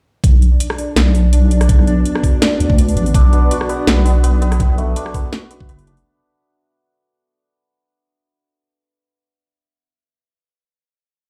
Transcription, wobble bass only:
0.24 B1
0.96 B1
1.69 B1
2.60 D2
2.96 A1
3.14 B1
3.87 B1
4.60 B1
5.69 F#1

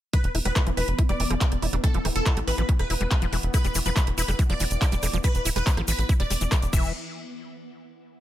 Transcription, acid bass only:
0.13 E3
0.35 E4
0.45 G3
0.56 E3
0.67 F3
0.77 E3
0.99 E4
1.09 G3
1.20 E3
1.31 F3
1.41 E3
1.62 E4
1.73 G3
1.84 E3
1.94 F3
2.05 E3
2.26 E4
2.37 G3
2.48 E3
2.58 F3
2.69 E3
2.90 E4
3.01 G3
3.11 E3
3.22 F3
3.33 E3
3.54 E4
3.65 G3
3.75 E3
3.86 F3
3.96 E3
4.18 E4
4.28 G3
4.39 E3
4.50 F3
4.60 E3
4.82 E4
4.92 G3
5.03 E3
5.13 F3
5.24 E3
5.45 E4
5.56 G3
5.67 E3
5.77 F3
5.88 E3
6.09 E4
6.20 G3
6.30 G3
6.41 E3
6.52 E3
6.73 E3

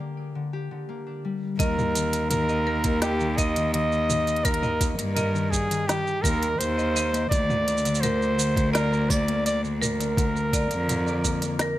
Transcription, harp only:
Already playing: D3 D4 D5
0.00 A#3
0.35 D3
0.53 G4
0.71 D3
0.89 A#3
1.07 D4
1.25 G3
1.60 D#3
1.95 D#3
2.31 D#3
2.49 D#5
2.67 A#3
2.85 A#3
3.20 D#3
3.39 D#4
3.56 D#3
3.74 D#3
4.10 D#3
4.45 D#3
4.63 D#5
4.81 A#3
4.99 A#3
5.34 D#3
5.52 D#4
5.70 D#3
5.88 D#3
6.24 D#3
6.60 D#3
6.78 D#5
6.95 A#3
7.13 A#3
7.49 D3
7.67 D4
7.85 D3
8.03 D3
8.38 D3
8.74 D3
8.92 D5
9.11 A#3
9.28 A#3
9.64 D3
9.82 D4
9.99 D3
10.17 D3
10.53 D3
10.88 D3
11.06 D5
11.24 A#3
11.42 A#3

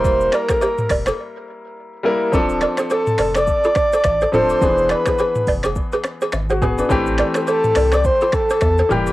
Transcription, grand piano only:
Already playing: G3 A#3 E4 A#4
2.03 G3 A#3 E4 A#4
2.32 F3 C4 D4 A4
4.32 F3 C4 D4 A4
4.60 E3 B3 D4 G#4
6.50 F#4
6.62 B3 G#4
6.78 D4 B4
6.89 E3 A3 C4 G4
8.89 E3 G3 A#3 G4

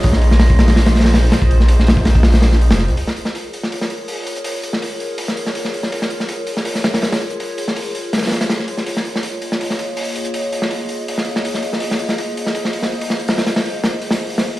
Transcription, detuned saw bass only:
0.04 A#1
0.31 A#1
0.59 A#1
1.51 A#1
1.79 A#1
2.06 A#1
2.61 A#1
2.71 F1
2.89 C#2

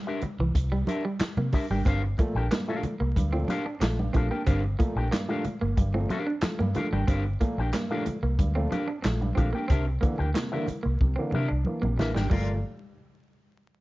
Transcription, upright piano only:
1.86 G2
2.19 A#2 F3 A3
2.36 F3 A3
2.51 G2
2.68 A#2 F3 A3
2.83 F3 A3
3.16 G2
3.33 A#2 F3 A3
3.49 F3 A3
3.81 F3 A3
3.99 G2
4.14 F3 A3
4.47 G2
4.79 A#2 F3 A3
4.96 F3 A3
5.11 G2
5.28 A#2 F3 A3
5.44 F3 A3
5.77 G2
5.93 A#2 F3 A3
6.10 F3 A3
6.43 F3 A3
6.60 G2
6.75 F3 A3
7.08 G2
7.40 A#2 F3 A3
7.59 F3 A3
7.74 G2
7.90 A#2 F3 A3
8.06 F3 A3
8.39 G2
8.56 A#2 F3 A3
8.71 F3 A3
9.04 F3 A3
9.21 G2
9.36 F3 A3
9.70 C3
10.02 D3 E3 A#3
10.19 E3 A#3
10.35 C3
10.52 D3 E3 A#3
10.68 E3 A#3
11.01 C3
11.18 D3 E3 A#3
11.34 E3 A#3
11.66 E3 A#3
11.84 C3
11.99 E3 A#3
12.32 A#2 F3 A3

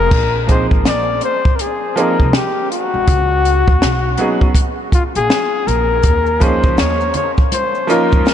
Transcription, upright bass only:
0.12 A#1
0.72 G#1
0.86 A#1
2.20 C2
2.94 G#1
3.08 C#2
3.68 D#2
3.82 B1
5.16 A#1
5.67 A#1
6.04 D#2
6.64 C#2
6.78 D#2
8.13 F2

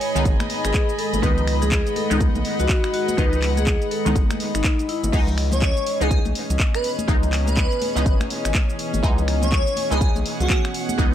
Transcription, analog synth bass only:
0.16 C#2
0.25 G#1
0.65 G#1
1.13 G#1
1.23 C#2
2.11 C#2
2.35 B1
2.60 C#2
3.18 C#2
4.06 C#2
4.16 G#1
4.55 G#1
5.03 G#1
5.13 C#2
6.01 C#2
6.25 B1
6.50 C#2
7.08 C#2
7.96 C#2
8.06 G#1
8.45 G#1
8.94 G#1
9.03 C#2
9.91 C#2
10.16 B1
10.40 C#2
10.99 C#2

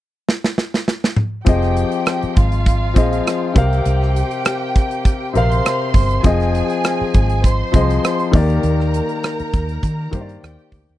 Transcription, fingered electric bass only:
1.47 F1
2.23 muted fingered electric bass stroke
2.37 G#1
2.96 A#1
3.56 C2
3.86 C2
5.35 A#1
5.94 G1
6.25 F1
7.01 muted fingered electric bass stroke
7.15 G#1
7.74 C2
8.34 D#2
8.64 D#2
9.40 muted fingered electric bass stroke
9.54 D#2
9.83 D#3
10.13 G2
10.43 D#2
10.72 D2
10.89 D#2

